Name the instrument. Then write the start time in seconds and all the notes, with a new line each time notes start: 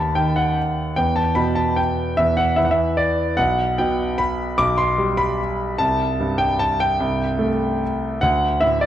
grand piano
Already playing: D#2 A5 B5
0.15 D#3 G5
0.36 F#5
0.96 E2 G5
1.16 A5
1.35 B2 B5
1.55 A5
1.76 G5
2.17 E2 E5
2.37 F#5
2.56 E3 E5
2.65 F#5
2.71 E5
2.97 D5
3.37 B1 F#5
3.78 B2 G5
4.18 B5
4.58 B1 D6
4.78 C6
4.98 G3
5.17 B5
5.78 C2 A5
6.20 G2
6.38 G5
6.59 A5
6.80 G5
7.00 C2
7.39 A3
8.21 D2 F#5
8.61 A2 E5
8.81 D5